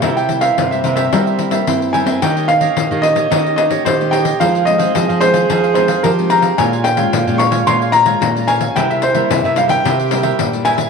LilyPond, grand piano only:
\new Staff \with { instrumentName = "Grand piano" } { \time 4/4 \key ees \mixolydian \tempo 4 = 110 r16 g''8 f''8 e''8 e''4. r16 aes''8 | g''8 f''4 ees''4 ees''8 c''8 g''8 | f''8 ees''4 c''4 c''8 bes'8 bes''8 | aes''8 g''4 des'''8 c'''8 bes''4 aes''8 |
g''16 e''16 c''8 e''16 e''16 f''16 g''4. r16 aes''8 | }